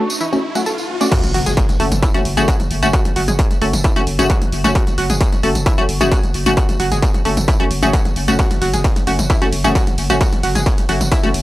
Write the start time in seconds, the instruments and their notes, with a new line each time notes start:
Already playing: ambient pad F#4 B4 E5 C#6, riser
0.10 tambourine
0.21 synth arpeggio sound E4, tambourine
0.33 synth stab A3 C#4 F#4, tambourine
0.55 synth stab A3 C#4 F#4, synth arpeggio sound F#4, tambourine
0.66 synth arpeggio sound A4, tambourine
0.78 tambourine
1.01 synth stab A3 C#4 F#4, synth arpeggio sound D5, tambourine
1.12 synth arpeggio sound F#4, kick, closed hi-hat, crash, impact
1.23 808-style bass F#1, closed hi-hat, mid tom, tambourine
1.34 808-style bass F#1, synth arpeggio sound F#4, open hi-hat
1.46 808-style bass F#1, synth arpeggio sound G#4, closed hi-hat, mid tom, tambourine
1.57 kick, closed hi-hat, tambourine
1.69 closed hi-hat, mid tom, tambourine
1.80 808-style bass F#1, synth stab A3 C#4 F#4, synth arpeggio sound A4, open hi-hat
1.92 808-style bass F#1, closed hi-hat, mid tom, tambourine
2.03 synth arpeggio sound E4, kick, closed hi-hat, tambourine
2.14 808-style bass F#1, synth stab A3 C#4 F#4, closed hi-hat, mid tom, tambourine
2.25 808-style bass F#1, open hi-hat
2.37 808-style bass F#1, synth stab A3 C#4 F#4, synth arpeggio sound G#4, closed hi-hat, mid tom, tambourine
2.48 synth arpeggio sound F#4, kick, closed hi-hat, tambourine
2.60 808-style bass F#1, closed hi-hat, mid tom, tambourine
2.71 808-style bass F#1, open hi-hat
2.83 808-style bass F#1, synth stab A3 C#4 F#4, synth arpeggio sound F#4, closed hi-hat, mid tom, tambourine
2.93 synth arpeggio sound F#4, kick, closed hi-hat, tambourine
3.05 808-style bass F#1, closed hi-hat, mid tom, tambourine
3.16 808-style bass F#1, synth arpeggio sound F#4, open hi-hat
3.28 808-style bass F#1, synth arpeggio sound G#4, closed hi-hat, mid tom, tambourine
3.39 kick, closed hi-hat, tambourine
3.51 closed hi-hat, mid tom, tambourine
3.62 808-style bass F#1, synth stab A3 C#4 F#4, synth arpeggio sound A4, open hi-hat
3.73 808-style bass F#1, closed hi-hat, mid tom, tambourine
3.84 synth arpeggio sound E4, kick, closed hi-hat
3.96 808-style bass F#1, synth stab A3 C#4 F#4, closed hi-hat, mid tom, tambourine
4.07 808-style bass F#1, open hi-hat
4.19 808-style bass F#1, synth stab A3 C#4 F#4, synth arpeggio sound G#4, closed hi-hat, mid tom, tambourine
4.30 synth arpeggio sound F#4, kick, closed hi-hat
4.42 808-style bass F#1, closed hi-hat, mid tom, tambourine
4.52 808-style bass F#1, open hi-hat
4.64 808-style bass F#1, synth stab A3 C#4 F#4, synth arpeggio sound F#4, closed hi-hat, mid tom, tambourine
4.75 synth arpeggio sound F#4, kick, closed hi-hat, tambourine
4.87 808-style bass F#1, closed hi-hat, mid tom, tambourine
4.98 808-style bass F#1, synth arpeggio sound F#4, open hi-hat
5.10 808-style bass F#1, synth arpeggio sound G#4, closed hi-hat, mid tom, tambourine
5.21 kick, closed hi-hat, tambourine
5.32 closed hi-hat, mid tom, tambourine
5.43 808-style bass F#1, synth stab A3 C#4 F#4, synth arpeggio sound A4, open hi-hat
5.55 808-style bass F#1, closed hi-hat, mid tom, tambourine
5.66 synth arpeggio sound E4, kick, closed hi-hat, tambourine
5.78 808-style bass F#1, synth stab A3 C#4 F#4, closed hi-hat, mid tom, tambourine
5.89 808-style bass F#1, open hi-hat
6.01 808-style bass F#1, synth stab A3 C#4 F#4, synth arpeggio sound G#4, closed hi-hat, mid tom, tambourine
6.12 synth arpeggio sound F#4, kick, closed hi-hat, tambourine
6.23 808-style bass F#1, closed hi-hat, mid tom, tambourine
6.34 808-style bass F#1, open hi-hat
6.46 808-style bass F#1, synth stab A3 C#4 F#4, synth arpeggio sound F#4, closed hi-hat, mid tom, tambourine
6.57 synth arpeggio sound F#4, kick, closed hi-hat, tambourine
6.69 808-style bass F#1, closed hi-hat, mid tom, tambourine
6.80 808-style bass F#1, synth arpeggio sound F#4, open hi-hat
6.92 808-style bass F#1, synth arpeggio sound G#4, closed hi-hat, mid tom, tambourine
7.02 kick, closed hi-hat, tambourine
7.14 closed hi-hat, mid tom, tambourine
7.25 808-style bass F#1, synth stab A3 C#4 F#4, synth arpeggio sound A4, open hi-hat
7.37 808-style bass F#1, closed hi-hat, mid tom, tambourine
7.48 synth arpeggio sound E4, kick, closed hi-hat, tambourine
7.60 808-style bass F#1, synth stab A3 C#4 F#4, closed hi-hat, mid tom, tambourine
7.71 808-style bass F#1, open hi-hat
7.83 808-style bass F#1, synth stab A3 C#4 F#4, synth arpeggio sound G#4, closed hi-hat, mid tom, tambourine
7.93 synth arpeggio sound F#4, kick, closed hi-hat, tambourine
8.05 808-style bass F#1, closed hi-hat, mid tom, tambourine
8.16 808-style bass F#1, open hi-hat
8.28 808-style bass F#1, synth stab A3 C#4 F#4, synth arpeggio sound F#4, closed hi-hat, mid tom, tambourine
8.39 synth arpeggio sound F#4, kick, closed hi-hat, ride, tambourine
8.51 808-style bass F#1, closed hi-hat, mid tom, ride, tambourine
8.62 808-style bass F#1, synth arpeggio sound F#4, open hi-hat, ride
8.73 808-style bass F#1, synth arpeggio sound G#4, closed hi-hat, mid tom, ride, tambourine
8.84 kick, closed hi-hat, ride, tambourine
8.96 closed hi-hat, mid tom, ride, tambourine
9.07 808-style bass F#1, synth stab A3 C#4 F#4, synth arpeggio sound F#4, open hi-hat, ride
9.19 808-style bass F#1, closed hi-hat, mid tom, ride, tambourine
9.30 synth arpeggio sound E4, kick, closed hi-hat, ride, tambourine
9.42 808-style bass F#1, synth stab A3 C#4 F#4, closed hi-hat, mid tom, ride, tambourine
9.52 808-style bass F#1, open hi-hat, ride
9.64 808-style bass F#1, synth stab A3 C#4 F#4, synth arpeggio sound G#4, closed hi-hat, mid tom, ride, tambourine
9.75 synth arpeggio sound F#4, kick, closed hi-hat, ride, tambourine
9.87 808-style bass F#1, closed hi-hat, mid tom, ride, tambourine
9.98 808-style bass F#1, open hi-hat, ride
10.10 808-style bass F#1, synth stab A3 C#4 F#4, synth arpeggio sound F#4, closed hi-hat, mid tom, ride, tambourine
10.21 synth arpeggio sound F#4, kick, closed hi-hat, ride, tambourine
10.33 808-style bass F#1, closed hi-hat, mid tom, ride, tambourine
10.43 808-style bass F#1, synth arpeggio sound F#4, open hi-hat, ride
10.55 808-style bass F#1, synth arpeggio sound G#4, closed hi-hat, mid tom, ride, tambourine
10.66 kick, closed hi-hat, ride, tambourine
10.78 closed hi-hat, mid tom, ride, tambourine
10.89 808-style bass F#1, synth stab A3 C#4 F#4, synth arpeggio sound F#4, open hi-hat, ride
11.01 808-style bass F#1, closed hi-hat, mid tom, ride, tambourine
11.12 synth arpeggio sound E4, kick, closed hi-hat, ride
11.23 808-style bass F#1, synth stab A3 C#4 F#4, closed hi-hat, mid tom, ride, tambourine
11.34 808-style bass F#1, open hi-hat, ride